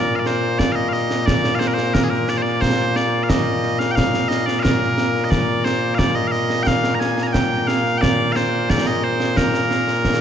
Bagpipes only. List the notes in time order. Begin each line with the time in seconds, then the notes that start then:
Already playing: A#2 A#3 D5
0.16 D5 F5
0.26 C5
0.59 D5
0.72 D#5 F5
0.89 F5
0.93 D#5
1.26 D5
1.55 F5
1.59 C5
1.68 A#4
1.74 C5
1.94 A#4
2.03 G#4
2.10 A#4
2.29 D5
2.37 C5
2.42 D5
2.61 C5
2.96 D5
3.24 F5
3.29 D#5
3.79 F5
3.91 G5
3.95 F5
4.29 D#5
4.46 D5
4.60 A#4 F5
5.24 D#5
5.31 D5
5.64 C5
5.95 D5 F5
6.15 D#5
6.28 F5
6.32 D#5
6.63 F5 G5
6.95 A#5
7.00 G#5
7.23 A#5
7.27 G#5
7.33 G5
7.67 F5
7.98 D5 G5
8.32 C5 F5
8.70 D5
8.87 D#5
9.04 C5
9.37 A#4